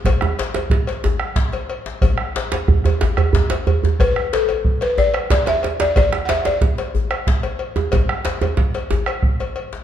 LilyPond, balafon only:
\new Staff \with { instrumentName = "Balafon" } { \time 12/8 \key a \mixolydian \tempo 4. = 122 r1. | r1. | b'4 a'4. b'8 d''4 d''8 e''4 d''8 | d''8.~ d''32 fis''32 e''8 d''2 r2 r8 |
r1. | }